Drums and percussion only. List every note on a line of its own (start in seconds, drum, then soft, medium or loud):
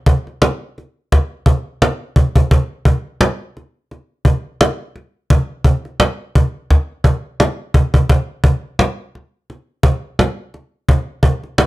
0.06 cajon bass loud
0.27 cajon slap soft
0.42 cajon slap loud
0.78 cajon slap soft
1.12 cajon bass loud
1.12 cajon slap medium
1.46 cajon bass loud
1.82 cajon slap loud
2.16 cajon bass loud
2.36 cajon bass loud
2.51 cajon bass loud
2.85 cajon bass loud
3.21 cajon slap loud
3.57 cajon slap soft
3.91 cajon slap medium
4.25 cajon bass loud
4.61 cajon slap loud
4.96 cajon slap soft
5.30 cajon bass loud
5.64 cajon bass loud
5.85 cajon slap soft
6.00 cajon slap loud
6.35 cajon bass medium
6.70 cajon bass loud
6.70 cajon slap medium
7.04 cajon bass loud
7.40 cajon slap loud
7.74 cajon bass loud
7.94 cajon bass loud
8.09 cajon bass loud
8.44 cajon bass loud
8.79 cajon slap loud
9.15 cajon slap soft
9.50 cajon slap medium
9.83 cajon bass loud
10.19 cajon slap loud
10.54 cajon slap soft
10.89 cajon bass loud
11.23 cajon bass loud
11.43 cajon slap soft
11.58 cajon slap loud